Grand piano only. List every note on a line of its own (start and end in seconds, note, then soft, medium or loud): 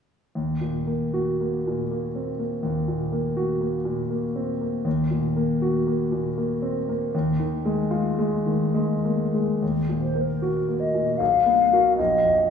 0.35 2.60 D#2 soft
0.61 1.04 A#2 soft
0.87 1.30 A#3 soft
1.13 1.56 F#4 soft
1.41 1.81 A#3 soft
1.67 2.06 A#2 soft
1.91 2.30 A#3 soft
2.15 2.40 C4 soft
2.39 2.78 A#3 soft
2.63 4.81 D#2 soft
2.88 3.27 A#2 soft
3.12 3.52 A#3 soft
3.37 3.76 F#4 soft
3.61 4.01 A#3 soft
3.85 4.25 A#2 soft
4.10 4.50 A#3 soft
4.35 4.60 C4 soft
4.61 4.86 A#3 soft
4.85 7.09 D#2 soft
5.11 5.51 A#2 soft
5.37 5.77 A#3 soft
5.62 6.02 F#4 soft
5.87 6.27 A#3 soft
6.12 6.52 A#2 soft
6.38 6.78 A#3 soft
6.62 6.88 C4 soft
6.89 7.14 A#3 soft
7.15 9.59 D#2 soft
7.40 7.81 D#3 soft
7.65 8.07 G#3 soft
7.91 8.35 F4 soft
8.19 8.64 G#3 soft
8.46 8.92 D#3 soft
8.74 9.22 G#3 soft
9.05 9.34 A#3 soft
9.34 9.62 G#3 soft
9.62 11.16 D#2 soft
9.89 10.31 A#2 soft
10.15 10.57 A#3 soft
10.42 10.84 F#4 soft
10.68 11.10 A#3 soft
10.95 11.20 A#2 soft
11.20 11.96 B1 soft
11.46 11.88 B3 soft
11.73 11.96 F#4 soft
11.73 11.97 A#4 soft
11.99 12.50 A#1 soft
12.25 12.50 F2 soft